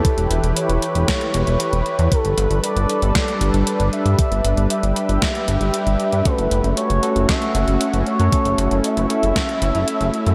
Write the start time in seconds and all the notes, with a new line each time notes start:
Already playing: E3 E4 G4 A4 B4
0.05 kick, closed hi-hat
0.18 E1, closed hi-hat
0.31 E1, closed hi-hat
0.43 E1, closed hi-hat
0.56 C#5, closed hi-hat
0.69 E1, closed hi-hat
0.82 closed hi-hat
0.95 E1, closed hi-hat
1.08 kick, snare, closed hi-hat
1.21 closed hi-hat
1.34 E1, closed hi-hat
1.47 E1, closed hi-hat
1.60 closed hi-hat
1.73 E1, closed hi-hat
1.86 closed hi-hat
1.99 E2, closed hi-hat
2.12 G3 D4 A4, kick, closed hi-hat
2.25 G1, closed hi-hat
2.38 G1, closed hi-hat
2.51 G1, closed hi-hat
2.63 D5, closed hi-hat
2.76 G1, closed hi-hat
2.89 closed hi-hat
3.02 G1, closed hi-hat
3.15 D5, kick, snare, closed hi-hat
3.28 closed hi-hat
3.41 G1, closed hi-hat
3.54 G1, closed hi-hat
3.67 closed hi-hat
3.80 G1, closed hi-hat
3.93 E5, closed hi-hat
4.06 G2, closed hi-hat
4.19 G4, kick, closed hi-hat
4.32 G1, closed hi-hat
4.45 G1, closed hi-hat
4.57 G1, closed hi-hat
4.70 E5, closed hi-hat
4.83 G1, closed hi-hat
4.96 closed hi-hat
5.09 G1, closed hi-hat
5.22 kick, snare, closed hi-hat
5.35 closed hi-hat
5.48 G1, closed hi-hat
5.61 G1, closed hi-hat
5.74 closed hi-hat
5.87 G1, closed hi-hat
6.00 closed hi-hat
6.12 G2, closed hi-hat
6.25 A3 C#4 F#4 A4 B4, kick, closed hi-hat
6.38 F#1, closed hi-hat
6.51 F#1, closed hi-hat
6.64 F#1, closed hi-hat
6.77 C#5, closed hi-hat
6.90 F#1, closed hi-hat
7.03 A3 C#4 F#4 A4, closed hi-hat
7.16 F#1, closed hi-hat
7.29 E5, kick, snare, closed hi-hat
7.42 closed hi-hat
7.55 F#1, closed hi-hat
7.68 F#1, closed hi-hat
7.81 closed hi-hat
7.93 F#1, closed hi-hat
8.06 C#5, closed hi-hat
8.20 F#2, closed hi-hat
8.32 A3 C#4 E4 F#4 A4, kick, closed hi-hat
8.45 F#1, closed hi-hat
8.58 F#1, closed hi-hat
8.71 F#1, closed hi-hat
8.84 E5, closed hi-hat
8.97 F#1, closed hi-hat
9.10 A3 C#4 F#4 A4, closed hi-hat
9.23 F#1, closed hi-hat
9.36 kick, snare, closed hi-hat
9.49 closed hi-hat
9.62 F#1, closed hi-hat
9.75 F#1, closed hi-hat
9.88 closed hi-hat
10.01 F#1, closed hi-hat
10.14 closed hi-hat
10.26 F#2, closed hi-hat